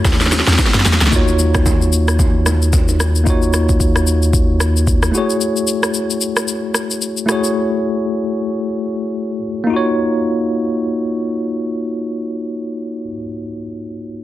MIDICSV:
0, 0, Header, 1, 5, 480
1, 0, Start_track
1, 0, Key_signature, -6, "minor"
1, 0, Tempo, 535714
1, 1004, Time_signature, 4, 2, 24, 8
1, 12757, End_track
2, 0, Start_track
2, 0, Title_t, "Tine electric piano"
2, 0, Program_c, 0, 4
2, 0, Control_c, 0, 64, 127
2, 0, Note_on_c, 0, 57, 80
2, 0, Note_on_c, 0, 64, 70
2, 0, Note_on_c, 0, 66, 70
2, 0, Note_on_c, 0, 68, 71
2, 0, Note_on_c, 0, 73, 88
2, 717, Note_off_c, 0, 57, 0
2, 724, Note_off_c, 0, 64, 0
2, 731, Note_off_c, 0, 66, 0
2, 738, Note_off_c, 0, 68, 0
2, 745, Note_off_c, 0, 73, 0
2, 984, Note_on_c, 0, 58, 70
2, 997, Note_on_c, 0, 63, 70
2, 1012, Note_on_c, 0, 65, 69
2, 1017, Control_c, 0, 64, 0
2, 1027, Note_on_c, 0, 66, 67
2, 1041, Note_on_c, 0, 73, 81
2, 1158, Control_c, 0, 64, 127
2, 2879, Note_off_c, 0, 58, 0
2, 2885, Note_off_c, 0, 63, 0
2, 2893, Note_off_c, 0, 65, 0
2, 2900, Note_off_c, 0, 66, 0
2, 2900, Note_on_c, 0, 58, 70
2, 2907, Note_off_c, 0, 73, 0
2, 2915, Note_on_c, 0, 63, 66
2, 2930, Note_on_c, 0, 65, 66
2, 2942, Note_on_c, 0, 66, 67
2, 2957, Note_on_c, 0, 73, 80
2, 4558, Note_off_c, 0, 58, 0
2, 4566, Note_off_c, 0, 63, 0
2, 4574, Note_off_c, 0, 65, 0
2, 4580, Note_off_c, 0, 66, 0
2, 4584, Note_on_c, 0, 57, 71
2, 4588, Note_off_c, 0, 73, 0
2, 4597, Note_on_c, 0, 64, 65
2, 4611, Note_on_c, 0, 66, 65
2, 4618, Control_c, 0, 64, 0
2, 4626, Note_on_c, 0, 68, 69
2, 4639, Note_on_c, 0, 73, 82
2, 4761, Control_c, 0, 64, 127
2, 6478, Note_off_c, 0, 57, 0
2, 6485, Note_off_c, 0, 64, 0
2, 6492, Note_off_c, 0, 66, 0
2, 6499, Note_off_c, 0, 68, 0
2, 6501, Note_on_c, 0, 57, 69
2, 6506, Note_off_c, 0, 73, 0
2, 6514, Note_on_c, 0, 64, 65
2, 6528, Note_on_c, 0, 66, 68
2, 6543, Note_on_c, 0, 68, 65
2, 6557, Note_on_c, 0, 73, 80
2, 8397, Note_off_c, 0, 57, 0
2, 8403, Note_off_c, 0, 64, 0
2, 8410, Note_off_c, 0, 66, 0
2, 8418, Note_off_c, 0, 68, 0
2, 8425, Note_off_c, 0, 73, 0
2, 8636, Note_on_c, 0, 58, 78
2, 8664, Note_on_c, 0, 63, 72
2, 8693, Note_on_c, 0, 65, 73
2, 8698, Control_c, 0, 64, 0
2, 8722, Note_on_c, 0, 66, 71
2, 8749, Note_on_c, 0, 73, 85
2, 8867, Control_c, 0, 64, 127
2, 11674, Note_off_c, 0, 58, 0
2, 11701, Note_off_c, 0, 63, 0
2, 11730, Note_off_c, 0, 65, 0
2, 11759, Note_off_c, 0, 66, 0
2, 11786, Note_off_c, 0, 73, 0
2, 12757, End_track
3, 0, Start_track
3, 0, Title_t, "Log drum bass"
3, 0, Program_c, 1, 39
3, 43, Note_on_c, 1, 39, 94
3, 383, Note_off_c, 1, 39, 0
3, 425, Note_on_c, 1, 40, 92
3, 515, Note_off_c, 1, 40, 0
3, 664, Note_on_c, 1, 42, 95
3, 754, Note_off_c, 1, 42, 0
3, 766, Note_on_c, 1, 40, 96
3, 890, Note_off_c, 1, 40, 0
3, 904, Note_on_c, 1, 37, 91
3, 994, Note_off_c, 1, 37, 0
3, 12757, End_track
4, 0, Start_track
4, 0, Title_t, "Sub bass"
4, 0, Program_c, 2, 38
4, 1007, Note_on_c, 2, 39, 84
4, 4570, Note_off_c, 2, 39, 0
4, 12757, End_track
5, 0, Start_track
5, 0, Title_t, "Drums"
5, 44, Note_on_c, 9, 36, 101
5, 45, Note_on_c, 9, 64, 65
5, 46, Note_on_c, 9, 82, 77
5, 47, Note_on_c, 9, 38, 59
5, 115, Note_off_c, 9, 38, 0
5, 115, Note_on_c, 9, 38, 49
5, 133, Note_off_c, 9, 36, 0
5, 135, Note_off_c, 9, 64, 0
5, 135, Note_off_c, 9, 82, 0
5, 185, Note_off_c, 9, 38, 0
5, 185, Note_on_c, 9, 38, 66
5, 186, Note_on_c, 9, 82, 49
5, 235, Note_off_c, 9, 38, 0
5, 235, Note_on_c, 9, 38, 55
5, 275, Note_off_c, 9, 82, 0
5, 284, Note_on_c, 9, 61, 73
5, 285, Note_off_c, 9, 38, 0
5, 285, Note_on_c, 9, 38, 69
5, 285, Note_on_c, 9, 82, 86
5, 355, Note_off_c, 9, 38, 0
5, 355, Note_on_c, 9, 38, 66
5, 374, Note_off_c, 9, 61, 0
5, 375, Note_off_c, 9, 82, 0
5, 424, Note_off_c, 9, 38, 0
5, 424, Note_on_c, 9, 38, 81
5, 426, Note_on_c, 9, 82, 54
5, 474, Note_off_c, 9, 38, 0
5, 474, Note_on_c, 9, 38, 71
5, 515, Note_off_c, 9, 82, 0
5, 524, Note_off_c, 9, 38, 0
5, 524, Note_on_c, 9, 38, 80
5, 524, Note_on_c, 9, 82, 76
5, 525, Note_on_c, 9, 60, 64
5, 526, Note_on_c, 9, 36, 89
5, 594, Note_off_c, 9, 38, 0
5, 594, Note_on_c, 9, 38, 72
5, 614, Note_off_c, 9, 60, 0
5, 614, Note_off_c, 9, 82, 0
5, 615, Note_off_c, 9, 36, 0
5, 662, Note_on_c, 9, 82, 49
5, 664, Note_off_c, 9, 38, 0
5, 664, Note_on_c, 9, 38, 95
5, 665, Note_on_c, 9, 60, 48
5, 715, Note_off_c, 9, 38, 0
5, 715, Note_on_c, 9, 38, 81
5, 751, Note_off_c, 9, 82, 0
5, 755, Note_off_c, 9, 60, 0
5, 765, Note_off_c, 9, 38, 0
5, 765, Note_on_c, 9, 38, 94
5, 767, Note_on_c, 9, 82, 78
5, 834, Note_off_c, 9, 38, 0
5, 834, Note_on_c, 9, 38, 89
5, 857, Note_off_c, 9, 82, 0
5, 906, Note_off_c, 9, 38, 0
5, 906, Note_on_c, 9, 38, 103
5, 906, Note_on_c, 9, 82, 53
5, 954, Note_off_c, 9, 38, 0
5, 954, Note_on_c, 9, 38, 91
5, 996, Note_off_c, 9, 82, 0
5, 1006, Note_on_c, 9, 36, 103
5, 1006, Note_on_c, 9, 64, 66
5, 1006, Note_on_c, 9, 82, 74
5, 1044, Note_off_c, 9, 38, 0
5, 1095, Note_off_c, 9, 64, 0
5, 1096, Note_off_c, 9, 36, 0
5, 1096, Note_off_c, 9, 82, 0
5, 1146, Note_on_c, 9, 82, 52
5, 1236, Note_off_c, 9, 82, 0
5, 1245, Note_on_c, 9, 61, 52
5, 1245, Note_on_c, 9, 82, 90
5, 1334, Note_off_c, 9, 82, 0
5, 1335, Note_off_c, 9, 61, 0
5, 1384, Note_on_c, 9, 61, 75
5, 1385, Note_on_c, 9, 37, 97
5, 1385, Note_on_c, 9, 82, 53
5, 1388, Note_on_c, 9, 36, 90
5, 1474, Note_off_c, 9, 61, 0
5, 1475, Note_off_c, 9, 37, 0
5, 1475, Note_off_c, 9, 82, 0
5, 1477, Note_off_c, 9, 36, 0
5, 1486, Note_on_c, 9, 36, 93
5, 1486, Note_on_c, 9, 60, 68
5, 1486, Note_on_c, 9, 64, 71
5, 1487, Note_on_c, 9, 82, 74
5, 1575, Note_off_c, 9, 36, 0
5, 1575, Note_off_c, 9, 60, 0
5, 1575, Note_off_c, 9, 64, 0
5, 1577, Note_off_c, 9, 82, 0
5, 1628, Note_on_c, 9, 82, 54
5, 1718, Note_off_c, 9, 82, 0
5, 1726, Note_on_c, 9, 82, 93
5, 1815, Note_off_c, 9, 82, 0
5, 1865, Note_on_c, 9, 37, 89
5, 1865, Note_on_c, 9, 82, 54
5, 1954, Note_off_c, 9, 82, 0
5, 1955, Note_off_c, 9, 37, 0
5, 1964, Note_on_c, 9, 36, 99
5, 1965, Note_on_c, 9, 82, 73
5, 1966, Note_on_c, 9, 64, 61
5, 2053, Note_off_c, 9, 36, 0
5, 2054, Note_off_c, 9, 82, 0
5, 2055, Note_off_c, 9, 64, 0
5, 2204, Note_on_c, 9, 37, 77
5, 2206, Note_on_c, 9, 61, 73
5, 2207, Note_on_c, 9, 82, 88
5, 2294, Note_off_c, 9, 37, 0
5, 2296, Note_off_c, 9, 61, 0
5, 2296, Note_off_c, 9, 82, 0
5, 2348, Note_on_c, 9, 82, 53
5, 2438, Note_off_c, 9, 82, 0
5, 2445, Note_on_c, 9, 60, 66
5, 2446, Note_on_c, 9, 82, 75
5, 2447, Note_on_c, 9, 36, 86
5, 2535, Note_off_c, 9, 60, 0
5, 2535, Note_off_c, 9, 82, 0
5, 2536, Note_off_c, 9, 36, 0
5, 2583, Note_on_c, 9, 82, 50
5, 2587, Note_on_c, 9, 60, 48
5, 2673, Note_off_c, 9, 82, 0
5, 2677, Note_off_c, 9, 60, 0
5, 2686, Note_on_c, 9, 60, 47
5, 2689, Note_on_c, 9, 37, 88
5, 2689, Note_on_c, 9, 82, 76
5, 2776, Note_off_c, 9, 60, 0
5, 2779, Note_off_c, 9, 37, 0
5, 2779, Note_off_c, 9, 82, 0
5, 2826, Note_on_c, 9, 82, 51
5, 2916, Note_off_c, 9, 82, 0
5, 2926, Note_on_c, 9, 36, 102
5, 2927, Note_on_c, 9, 82, 74
5, 3016, Note_off_c, 9, 36, 0
5, 3017, Note_off_c, 9, 82, 0
5, 3066, Note_on_c, 9, 82, 50
5, 3155, Note_off_c, 9, 82, 0
5, 3166, Note_on_c, 9, 82, 92
5, 3169, Note_on_c, 9, 37, 84
5, 3256, Note_off_c, 9, 82, 0
5, 3259, Note_off_c, 9, 37, 0
5, 3307, Note_on_c, 9, 82, 50
5, 3308, Note_on_c, 9, 36, 87
5, 3396, Note_off_c, 9, 82, 0
5, 3398, Note_off_c, 9, 36, 0
5, 3406, Note_on_c, 9, 36, 89
5, 3408, Note_on_c, 9, 82, 77
5, 3495, Note_off_c, 9, 36, 0
5, 3498, Note_off_c, 9, 82, 0
5, 3545, Note_on_c, 9, 37, 85
5, 3550, Note_on_c, 9, 82, 55
5, 3635, Note_off_c, 9, 37, 0
5, 3639, Note_off_c, 9, 82, 0
5, 3647, Note_on_c, 9, 82, 96
5, 3736, Note_off_c, 9, 82, 0
5, 3785, Note_on_c, 9, 82, 54
5, 3874, Note_off_c, 9, 82, 0
5, 3883, Note_on_c, 9, 36, 98
5, 3886, Note_on_c, 9, 82, 70
5, 3973, Note_off_c, 9, 36, 0
5, 3975, Note_off_c, 9, 82, 0
5, 4124, Note_on_c, 9, 37, 84
5, 4127, Note_on_c, 9, 82, 83
5, 4214, Note_off_c, 9, 37, 0
5, 4216, Note_off_c, 9, 82, 0
5, 4270, Note_on_c, 9, 82, 55
5, 4359, Note_off_c, 9, 82, 0
5, 4366, Note_on_c, 9, 36, 88
5, 4367, Note_on_c, 9, 82, 68
5, 4456, Note_off_c, 9, 36, 0
5, 4457, Note_off_c, 9, 82, 0
5, 4504, Note_on_c, 9, 37, 93
5, 4504, Note_on_c, 9, 82, 49
5, 4593, Note_off_c, 9, 37, 0
5, 4593, Note_off_c, 9, 82, 0
5, 4609, Note_on_c, 9, 82, 76
5, 4699, Note_off_c, 9, 82, 0
5, 4747, Note_on_c, 9, 82, 51
5, 4836, Note_off_c, 9, 82, 0
5, 4847, Note_on_c, 9, 82, 76
5, 4937, Note_off_c, 9, 82, 0
5, 4984, Note_on_c, 9, 82, 50
5, 5074, Note_off_c, 9, 82, 0
5, 5084, Note_on_c, 9, 82, 93
5, 5174, Note_off_c, 9, 82, 0
5, 5225, Note_on_c, 9, 37, 87
5, 5225, Note_on_c, 9, 82, 49
5, 5314, Note_off_c, 9, 37, 0
5, 5315, Note_off_c, 9, 82, 0
5, 5323, Note_on_c, 9, 82, 71
5, 5413, Note_off_c, 9, 82, 0
5, 5468, Note_on_c, 9, 82, 56
5, 5558, Note_off_c, 9, 82, 0
5, 5565, Note_on_c, 9, 82, 97
5, 5654, Note_off_c, 9, 82, 0
5, 5704, Note_on_c, 9, 37, 85
5, 5704, Note_on_c, 9, 82, 57
5, 5793, Note_off_c, 9, 37, 0
5, 5793, Note_off_c, 9, 82, 0
5, 5804, Note_on_c, 9, 82, 72
5, 5894, Note_off_c, 9, 82, 0
5, 6043, Note_on_c, 9, 37, 80
5, 6046, Note_on_c, 9, 82, 84
5, 6133, Note_off_c, 9, 37, 0
5, 6135, Note_off_c, 9, 82, 0
5, 6188, Note_on_c, 9, 82, 51
5, 6278, Note_off_c, 9, 82, 0
5, 6287, Note_on_c, 9, 82, 71
5, 6376, Note_off_c, 9, 82, 0
5, 6423, Note_on_c, 9, 82, 50
5, 6513, Note_off_c, 9, 82, 0
5, 6529, Note_on_c, 9, 37, 86
5, 6530, Note_on_c, 9, 82, 71
5, 6619, Note_off_c, 9, 37, 0
5, 6619, Note_off_c, 9, 82, 0
5, 6666, Note_on_c, 9, 82, 49
5, 6756, Note_off_c, 9, 82, 0
5, 12757, End_track
0, 0, End_of_file